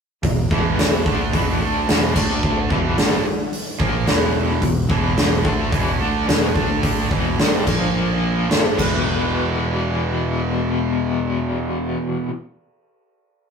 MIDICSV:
0, 0, Header, 1, 4, 480
1, 0, Start_track
1, 0, Key_signature, 1, "minor"
1, 0, Tempo, 550459
1, 197, Time_signature, 4, 2, 24, 8
1, 5957, Tempo, 559701
1, 11677, End_track
2, 0, Start_track
2, 0, Title_t, "Overdriven electric guitar"
2, 0, Program_c, 0, 29
2, 206, Note_on_c, 0, 40, 62
2, 211, Note_on_c, 0, 47, 68
2, 394, Note_off_c, 0, 40, 0
2, 396, Note_off_c, 0, 47, 0
2, 435, Note_on_c, 0, 40, 78
2, 441, Note_on_c, 0, 47, 89
2, 445, Note_on_c, 0, 52, 98
2, 908, Note_off_c, 0, 40, 0
2, 909, Note_off_c, 0, 47, 0
2, 911, Note_off_c, 0, 52, 0
2, 913, Note_on_c, 0, 50, 83
2, 914, Note_on_c, 0, 57, 95
2, 921, Note_on_c, 0, 62, 88
2, 1147, Note_off_c, 0, 50, 0
2, 1148, Note_off_c, 0, 57, 0
2, 1149, Note_on_c, 0, 40, 88
2, 1151, Note_off_c, 0, 62, 0
2, 1156, Note_on_c, 0, 47, 80
2, 1160, Note_on_c, 0, 52, 87
2, 1385, Note_off_c, 0, 40, 0
2, 1388, Note_off_c, 0, 47, 0
2, 1391, Note_off_c, 0, 52, 0
2, 1391, Note_on_c, 0, 50, 88
2, 1395, Note_on_c, 0, 57, 94
2, 1402, Note_on_c, 0, 62, 96
2, 1626, Note_off_c, 0, 50, 0
2, 1628, Note_off_c, 0, 57, 0
2, 1631, Note_off_c, 0, 62, 0
2, 1632, Note_on_c, 0, 40, 92
2, 1638, Note_on_c, 0, 47, 98
2, 1644, Note_on_c, 0, 52, 97
2, 1866, Note_off_c, 0, 40, 0
2, 1867, Note_off_c, 0, 47, 0
2, 1870, Note_on_c, 0, 50, 95
2, 1872, Note_off_c, 0, 52, 0
2, 1879, Note_on_c, 0, 57, 93
2, 1880, Note_on_c, 0, 62, 95
2, 2344, Note_off_c, 0, 50, 0
2, 2348, Note_off_c, 0, 57, 0
2, 2349, Note_off_c, 0, 62, 0
2, 2356, Note_on_c, 0, 40, 85
2, 2361, Note_on_c, 0, 47, 90
2, 2363, Note_on_c, 0, 52, 101
2, 2587, Note_off_c, 0, 40, 0
2, 2589, Note_off_c, 0, 47, 0
2, 2590, Note_off_c, 0, 52, 0
2, 2598, Note_on_c, 0, 43, 92
2, 2606, Note_on_c, 0, 50, 86
2, 2612, Note_on_c, 0, 55, 104
2, 2827, Note_off_c, 0, 43, 0
2, 2831, Note_off_c, 0, 50, 0
2, 2835, Note_off_c, 0, 55, 0
2, 3317, Note_on_c, 0, 46, 98
2, 3320, Note_on_c, 0, 53, 99
2, 3326, Note_on_c, 0, 58, 97
2, 3546, Note_off_c, 0, 46, 0
2, 3548, Note_off_c, 0, 53, 0
2, 3549, Note_on_c, 0, 40, 96
2, 3551, Note_off_c, 0, 58, 0
2, 3552, Note_on_c, 0, 47, 112
2, 3560, Note_on_c, 0, 52, 110
2, 4015, Note_off_c, 0, 40, 0
2, 4018, Note_off_c, 0, 47, 0
2, 4026, Note_on_c, 0, 40, 60
2, 4027, Note_off_c, 0, 52, 0
2, 4028, Note_on_c, 0, 47, 75
2, 4220, Note_off_c, 0, 40, 0
2, 4221, Note_off_c, 0, 47, 0
2, 4263, Note_on_c, 0, 40, 93
2, 4269, Note_on_c, 0, 47, 86
2, 4273, Note_on_c, 0, 52, 101
2, 4740, Note_off_c, 0, 40, 0
2, 4740, Note_off_c, 0, 47, 0
2, 4744, Note_on_c, 0, 50, 90
2, 4745, Note_off_c, 0, 52, 0
2, 4749, Note_on_c, 0, 57, 84
2, 4753, Note_on_c, 0, 62, 99
2, 4981, Note_off_c, 0, 50, 0
2, 4983, Note_off_c, 0, 57, 0
2, 4983, Note_on_c, 0, 40, 90
2, 4985, Note_off_c, 0, 62, 0
2, 4988, Note_on_c, 0, 47, 89
2, 4992, Note_on_c, 0, 52, 96
2, 5221, Note_off_c, 0, 40, 0
2, 5222, Note_off_c, 0, 47, 0
2, 5223, Note_off_c, 0, 52, 0
2, 5225, Note_on_c, 0, 50, 89
2, 5226, Note_on_c, 0, 57, 89
2, 5233, Note_on_c, 0, 62, 105
2, 5463, Note_off_c, 0, 50, 0
2, 5463, Note_off_c, 0, 57, 0
2, 5466, Note_off_c, 0, 62, 0
2, 5468, Note_on_c, 0, 40, 96
2, 5471, Note_on_c, 0, 47, 103
2, 5473, Note_on_c, 0, 52, 101
2, 5705, Note_off_c, 0, 40, 0
2, 5706, Note_off_c, 0, 47, 0
2, 5707, Note_off_c, 0, 52, 0
2, 5710, Note_on_c, 0, 50, 101
2, 5714, Note_on_c, 0, 57, 104
2, 5718, Note_on_c, 0, 62, 99
2, 6185, Note_off_c, 0, 50, 0
2, 6186, Note_on_c, 0, 40, 87
2, 6187, Note_off_c, 0, 57, 0
2, 6189, Note_off_c, 0, 62, 0
2, 6194, Note_on_c, 0, 47, 89
2, 6200, Note_on_c, 0, 52, 95
2, 6422, Note_off_c, 0, 40, 0
2, 6425, Note_off_c, 0, 47, 0
2, 6428, Note_off_c, 0, 52, 0
2, 6428, Note_on_c, 0, 43, 82
2, 6434, Note_on_c, 0, 50, 83
2, 6438, Note_on_c, 0, 55, 96
2, 6662, Note_off_c, 0, 43, 0
2, 6663, Note_off_c, 0, 50, 0
2, 6666, Note_on_c, 0, 46, 80
2, 6667, Note_off_c, 0, 55, 0
2, 6672, Note_on_c, 0, 53, 87
2, 6681, Note_on_c, 0, 58, 84
2, 7379, Note_off_c, 0, 46, 0
2, 7382, Note_off_c, 0, 53, 0
2, 7384, Note_on_c, 0, 43, 90
2, 7386, Note_on_c, 0, 50, 90
2, 7387, Note_off_c, 0, 58, 0
2, 7395, Note_on_c, 0, 55, 98
2, 7615, Note_off_c, 0, 43, 0
2, 7619, Note_on_c, 0, 40, 89
2, 7620, Note_off_c, 0, 50, 0
2, 7625, Note_off_c, 0, 55, 0
2, 7640, Note_on_c, 0, 47, 104
2, 7654, Note_on_c, 0, 52, 100
2, 10620, Note_off_c, 0, 40, 0
2, 10641, Note_off_c, 0, 47, 0
2, 10656, Note_off_c, 0, 52, 0
2, 11677, End_track
3, 0, Start_track
3, 0, Title_t, "Picked electric bass"
3, 0, Program_c, 1, 34
3, 200, Note_on_c, 1, 28, 82
3, 422, Note_off_c, 1, 28, 0
3, 443, Note_on_c, 1, 28, 89
3, 886, Note_off_c, 1, 28, 0
3, 923, Note_on_c, 1, 38, 86
3, 1143, Note_off_c, 1, 38, 0
3, 1165, Note_on_c, 1, 28, 88
3, 1384, Note_off_c, 1, 28, 0
3, 1390, Note_on_c, 1, 38, 83
3, 1615, Note_off_c, 1, 38, 0
3, 1634, Note_on_c, 1, 28, 88
3, 1857, Note_off_c, 1, 28, 0
3, 1880, Note_on_c, 1, 38, 88
3, 2322, Note_off_c, 1, 38, 0
3, 2357, Note_on_c, 1, 28, 93
3, 2578, Note_off_c, 1, 28, 0
3, 2589, Note_on_c, 1, 31, 101
3, 2813, Note_off_c, 1, 31, 0
3, 3313, Note_on_c, 1, 34, 87
3, 3534, Note_off_c, 1, 34, 0
3, 3542, Note_on_c, 1, 28, 97
3, 3992, Note_off_c, 1, 28, 0
3, 4027, Note_on_c, 1, 28, 85
3, 4252, Note_off_c, 1, 28, 0
3, 4269, Note_on_c, 1, 28, 95
3, 4716, Note_off_c, 1, 28, 0
3, 4752, Note_on_c, 1, 38, 92
3, 4975, Note_off_c, 1, 38, 0
3, 4991, Note_on_c, 1, 28, 99
3, 5215, Note_off_c, 1, 28, 0
3, 5225, Note_on_c, 1, 38, 93
3, 5453, Note_off_c, 1, 38, 0
3, 5470, Note_on_c, 1, 28, 96
3, 5696, Note_off_c, 1, 28, 0
3, 5715, Note_on_c, 1, 38, 96
3, 6161, Note_off_c, 1, 38, 0
3, 6195, Note_on_c, 1, 28, 93
3, 6417, Note_off_c, 1, 28, 0
3, 6433, Note_on_c, 1, 31, 94
3, 6655, Note_off_c, 1, 31, 0
3, 6672, Note_on_c, 1, 34, 90
3, 7355, Note_off_c, 1, 34, 0
3, 7387, Note_on_c, 1, 31, 84
3, 7611, Note_off_c, 1, 31, 0
3, 7632, Note_on_c, 1, 28, 91
3, 10326, Note_off_c, 1, 28, 0
3, 11677, End_track
4, 0, Start_track
4, 0, Title_t, "Drums"
4, 202, Note_on_c, 9, 46, 54
4, 203, Note_on_c, 9, 36, 89
4, 289, Note_off_c, 9, 46, 0
4, 291, Note_off_c, 9, 36, 0
4, 445, Note_on_c, 9, 36, 105
4, 532, Note_off_c, 9, 36, 0
4, 688, Note_on_c, 9, 46, 64
4, 691, Note_on_c, 9, 38, 118
4, 775, Note_off_c, 9, 46, 0
4, 778, Note_off_c, 9, 38, 0
4, 924, Note_on_c, 9, 36, 105
4, 1011, Note_off_c, 9, 36, 0
4, 1164, Note_on_c, 9, 36, 96
4, 1165, Note_on_c, 9, 46, 63
4, 1251, Note_off_c, 9, 36, 0
4, 1252, Note_off_c, 9, 46, 0
4, 1645, Note_on_c, 9, 46, 64
4, 1648, Note_on_c, 9, 38, 113
4, 1732, Note_off_c, 9, 46, 0
4, 1735, Note_off_c, 9, 38, 0
4, 1881, Note_on_c, 9, 36, 90
4, 1882, Note_on_c, 9, 49, 96
4, 1968, Note_off_c, 9, 36, 0
4, 1969, Note_off_c, 9, 49, 0
4, 2120, Note_on_c, 9, 36, 99
4, 2207, Note_off_c, 9, 36, 0
4, 2358, Note_on_c, 9, 36, 97
4, 2445, Note_off_c, 9, 36, 0
4, 2597, Note_on_c, 9, 46, 61
4, 2600, Note_on_c, 9, 38, 116
4, 2684, Note_off_c, 9, 46, 0
4, 2687, Note_off_c, 9, 38, 0
4, 3075, Note_on_c, 9, 46, 56
4, 3162, Note_off_c, 9, 46, 0
4, 3312, Note_on_c, 9, 36, 109
4, 3399, Note_off_c, 9, 36, 0
4, 3550, Note_on_c, 9, 46, 55
4, 3554, Note_on_c, 9, 38, 104
4, 3637, Note_off_c, 9, 46, 0
4, 3641, Note_off_c, 9, 38, 0
4, 4028, Note_on_c, 9, 46, 56
4, 4029, Note_on_c, 9, 36, 85
4, 4115, Note_off_c, 9, 46, 0
4, 4116, Note_off_c, 9, 36, 0
4, 4270, Note_on_c, 9, 36, 113
4, 4357, Note_off_c, 9, 36, 0
4, 4511, Note_on_c, 9, 46, 59
4, 4515, Note_on_c, 9, 38, 123
4, 4598, Note_off_c, 9, 46, 0
4, 4602, Note_off_c, 9, 38, 0
4, 4751, Note_on_c, 9, 36, 114
4, 4839, Note_off_c, 9, 36, 0
4, 4992, Note_on_c, 9, 36, 110
4, 4993, Note_on_c, 9, 46, 59
4, 5079, Note_off_c, 9, 36, 0
4, 5080, Note_off_c, 9, 46, 0
4, 5481, Note_on_c, 9, 46, 59
4, 5485, Note_on_c, 9, 38, 111
4, 5569, Note_off_c, 9, 46, 0
4, 5572, Note_off_c, 9, 38, 0
4, 5717, Note_on_c, 9, 36, 88
4, 5804, Note_off_c, 9, 36, 0
4, 5958, Note_on_c, 9, 36, 107
4, 5960, Note_on_c, 9, 46, 60
4, 6044, Note_off_c, 9, 36, 0
4, 6046, Note_off_c, 9, 46, 0
4, 6197, Note_on_c, 9, 36, 100
4, 6283, Note_off_c, 9, 36, 0
4, 6438, Note_on_c, 9, 46, 62
4, 6442, Note_on_c, 9, 38, 119
4, 6524, Note_off_c, 9, 46, 0
4, 6527, Note_off_c, 9, 38, 0
4, 6675, Note_on_c, 9, 36, 97
4, 6677, Note_on_c, 9, 49, 86
4, 6761, Note_off_c, 9, 36, 0
4, 6763, Note_off_c, 9, 49, 0
4, 7394, Note_on_c, 9, 46, 54
4, 7397, Note_on_c, 9, 38, 111
4, 7479, Note_off_c, 9, 46, 0
4, 7483, Note_off_c, 9, 38, 0
4, 7633, Note_on_c, 9, 36, 88
4, 7637, Note_on_c, 9, 57, 84
4, 7718, Note_off_c, 9, 36, 0
4, 7722, Note_off_c, 9, 57, 0
4, 11677, End_track
0, 0, End_of_file